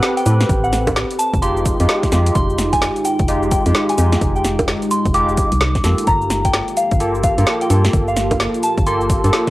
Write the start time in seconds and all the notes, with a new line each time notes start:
Already playing: C4 G4 A4 B4
0.03 snare, cabasa
0.17 G5, closed hi-hat, cabasa
0.26 A2 C4 G4 A4 B4, open hi-hat, cabasa
0.41 snare, closed hi-hat, cabasa
0.49 A1, kick, closed hi-hat, cabasa
0.64 F#5, cabasa
0.73 snare, open hi-hat, cabasa
0.87 kick, closed hi-hat, high bongo, cabasa
0.96 snare, cabasa
1.10 closed hi-hat, cabasa
1.19 A5, open hi-hat, cabasa
1.34 F1, kick, closed hi-hat, cabasa
1.42 G#3 D#4 F4 G4 C6, closed hi-hat, cabasa
1.57 cabasa
1.66 kick, open hi-hat, cabasa
1.80 F2 G#3 D#4 F4 G4, closed hi-hat, cabasa
1.85 G#3
1.89 snare, cabasa
2.03 kick, snare, closed hi-hat, cabasa
2.12 F2 G#3 D#4 F4 G4, snare, open hi-hat, cabasa
2.26 closed hi-hat, cabasa
2.35 F1 C6, kick, closed hi-hat, cabasa
2.50 cabasa
2.59 snare, open hi-hat, cabasa
2.73 G#5, kick, closed hi-hat, cabasa
2.82 snare, cabasa
2.96 closed hi-hat, cabasa
3.05 G5, open hi-hat, cabasa
3.19 F1, kick, closed hi-hat, cabasa
3.28 G#3 D#4 F4 G4, closed hi-hat, cabasa
3.43 cabasa
3.51 G5, kick, open hi-hat, cabasa
3.66 F2 G#3 D#4 F4 G4, closed hi-hat, cabasa
3.75 snare, cabasa
3.89 G#5, closed hi-hat, cabasa
3.98 F2 G#3 D#4 F4 G4, open hi-hat, cabasa
4.12 snare, closed hi-hat, cabasa
4.21 F1, kick, closed hi-hat, cabasa
4.36 G5, cabasa
4.44 snare, open hi-hat, cabasa
4.59 kick, closed hi-hat, high bongo, cabasa
4.68 snare, cabasa
4.82 closed hi-hat, cabasa
4.91 C6, open hi-hat, cabasa
5.05 F1, kick, closed hi-hat, cabasa
5.14 G#3 D#4 F4 G4 D6, closed hi-hat, cabasa
5.29 cabasa
5.37 kick, open hi-hat, cabasa
5.52 C2, closed hi-hat, cabasa
5.61 snare, cabasa
5.75 kick, snare, closed hi-hat, cabasa
5.84 F2 A#3 F4 G4 A4, snare, open hi-hat, cabasa
5.98 closed hi-hat, cabasa
6.07 G1 F4 A#5, kick, closed hi-hat, cabasa
6.21 cabasa
6.30 snare, open hi-hat, cabasa
6.42 A#3 G5, kick, closed hi-hat, cabasa
6.54 snare, cabasa
6.68 closed hi-hat, cabasa
6.77 F5, open hi-hat, cabasa
6.91 G1, kick, closed hi-hat, cabasa
7.00 A#3 F4 G4 A4, closed hi-hat, cabasa
7.15 cabasa
7.24 F5, kick, open hi-hat, cabasa
7.38 G2 A#3 F4 G4 A4, closed hi-hat, cabasa
7.42 A5
7.47 snare, cabasa
7.61 G5, closed hi-hat, cabasa
7.70 G2 A#3 F4 G4 A4, open hi-hat, cabasa
7.85 snare, closed hi-hat, cabasa
7.93 G1, kick, closed hi-hat, cabasa
8.08 F5, cabasa
8.17 snare, open hi-hat, cabasa
8.31 kick, closed hi-hat, high bongo, cabasa
8.40 snare, cabasa
8.54 closed hi-hat, cabasa
8.63 A5, open hi-hat, cabasa
8.78 G1, kick, closed hi-hat, cabasa
8.86 A#3 F4 G4 A4 C6, closed hi-hat, cabasa
9.01 cabasa
9.10 kick, open hi-hat, cabasa
9.24 G2 A#3 F4 G4 A4, closed hi-hat, cabasa
9.33 snare, cabasa